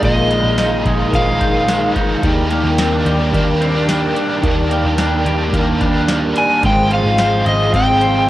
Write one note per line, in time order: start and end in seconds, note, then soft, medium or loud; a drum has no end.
0.00 0.42 A#1 loud
0.00 0.30 A#2 medium
0.00 2.24 A#2 medium
0.00 8.30 D#3 medium
0.00 0.30 D#3 medium
0.00 1.12 F3 medium
0.00 0.30 G#3 medium
0.00 0.31 G#3 medium
0.00 0.58 D#4 medium
0.00 0.85 G#4 medium
0.00 2.19 G#4 medium
0.00 6.59 A#4 medium
0.00 2.19 F5 medium
0.00 kick loud
0.00 closed hi-hat medium
0.04 0.31 D#4 medium
0.04 0.28 F4 medium
0.04 0.83 D#5 loud
0.29 1.67 G#3 medium
0.29 1.18 D#4 medium
0.29 1.12 F4 medium
0.29 closed hi-hat medium
0.34 1.13 G#3 soft
0.44 0.83 A#1 medium
0.58 1.40 D#4 medium
0.58 snare loud
0.58 closed hi-hat medium
0.58 tambourine medium
0.85 1.12 A#1 loud
0.85 2.29 G#4 medium
0.85 kick medium
0.85 closed hi-hat medium
1.09 1.92 A#1 loud
1.09 2.22 D#3 medium
1.13 2.23 F3 medium
1.13 2.24 G#3 medium
1.13 1.93 F5 loud
1.13 kick medium
1.13 closed hi-hat medium
1.18 2.25 D#4 medium
1.18 2.26 F4 medium
1.41 1.95 D#4 medium
1.41 kick medium
1.41 closed hi-hat soft
1.68 2.29 G#3 medium
1.68 snare loud
1.68 closed hi-hat medium
1.68 tambourine medium
1.96 2.78 D#4 medium
1.96 kick loud
1.96 closed hi-hat medium
2.22 2.62 D#2 loud
2.22 2.50 D#3 medium
2.22 4.43 D#3 medium
2.22 2.51 G3 medium
2.22 2.51 A#3 medium
2.22 2.52 D4 loud
2.22 6.60 D5 medium
2.22 6.60 G5 medium
2.22 kick loud
2.22 closed hi-hat medium
2.27 2.49 G4 medium
2.50 3.32 A#3 medium
2.50 3.35 D4 medium
2.50 3.33 G4 medium
2.50 closed hi-hat medium
2.56 3.34 A#3 medium
2.64 3.03 D#2 loud
2.78 2.92 C4 medium
2.78 snare loud
2.78 closed hi-hat medium
2.78 tambourine medium
2.92 3.60 D4 soft
3.06 3.32 D#2 medium
3.06 5.25 G4 medium
3.06 closed hi-hat medium
3.30 4.12 D#2 medium
3.30 4.42 G3 medium
3.30 3.87 A#3 medium
3.30 kick loud
3.30 closed hi-hat medium
3.36 4.43 A#3 medium
3.36 4.44 D4 medium
3.43 4.45 G4 medium
3.61 3.75 C4 medium
3.61 closed hi-hat soft
3.75 4.15 D4 medium
3.88 4.69 A#3 medium
3.88 snare loud
3.88 closed hi-hat medium
3.88 tambourine medium
4.16 4.97 D4 medium
4.16 closed hi-hat medium
4.42 4.83 D#2 loud
4.42 4.70 D#3 medium
4.42 6.63 D#3 medium
4.42 4.71 G3 medium
4.42 4.71 A#3 loud
4.42 4.72 D4 loud
4.42 kick loud
4.42 closed hi-hat medium
4.46 4.69 G4 loud
4.70 5.52 A#3 medium
4.70 5.55 D4 medium
4.70 5.53 G4 medium
4.70 closed hi-hat medium
4.76 5.53 A#3 soft
4.84 5.24 D#2 loud
4.98 5.80 D4 medium
4.98 snare loud
4.98 closed hi-hat medium
4.98 tambourine medium
5.26 5.52 D#2 medium
5.26 6.69 G4 medium
5.26 closed hi-hat medium
5.50 6.32 D#2 medium
5.50 6.62 G3 medium
5.50 6.07 A#3 medium
5.50 kick medium
5.54 6.64 A#3 medium
5.54 closed hi-hat medium
5.59 6.65 D4 medium
5.59 6.66 G4 medium
5.81 6.35 D4 medium
5.81 kick loud
5.81 closed hi-hat soft
6.08 6.69 A#3 medium
6.08 snare loud
6.08 closed hi-hat medium
6.08 tambourine medium
6.36 6.69 D4 medium
6.36 6.63 G#5 medium
6.36 closed hi-hat medium
6.62 7.03 G#1 loud
6.62 6.90 G#2 medium
6.62 6.91 D#3 medium
6.62 6.91 F3 medium
6.62 8.30 G#3 medium
6.62 6.92 G#3 medium
6.62 6.91 C4 medium
6.62 8.30 G#4 medium
6.62 8.30 C5 medium
6.62 8.30 F5 medium
6.62 6.90 G5 loud
6.62 kick loud
6.62 closed hi-hat medium
6.66 6.89 F4 medium
6.90 7.73 G#3 soft
6.90 7.74 C4 soft
6.90 7.82 F4 medium
6.90 8.28 F4 medium
6.90 closed hi-hat medium
6.94 7.69 F3 soft
6.94 7.48 F5 loud
7.04 7.44 G#1 loud
7.18 8.00 C5 medium
7.18 snare loud
7.18 closed hi-hat medium
7.18 tambourine medium
7.46 7.72 G#1 medium
7.46 8.30 D#5 medium
7.46 7.76 D#5 medium
7.46 closed hi-hat medium
7.70 8.30 G#1 medium
7.70 8.30 F3 medium
7.70 kick medium
7.74 8.30 G#3 medium
7.74 8.30 C4 medium
7.74 8.26 G5 medium
7.74 closed hi-hat medium
7.79 8.30 C4 medium
7.79 8.30 F4 medium
8.01 8.30 C5 medium
8.01 closed hi-hat soft